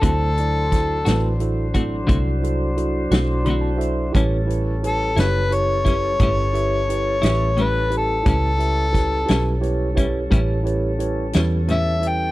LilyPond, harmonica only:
\new Staff \with { instrumentName = "Harmonica" } { \time 12/8 \key a \mixolydian \tempo 4. = 58 a'2 r1 | r4 a'8 b'8 cis''2. b'8 a'8 | a'2 r2. e''8 g''8 | }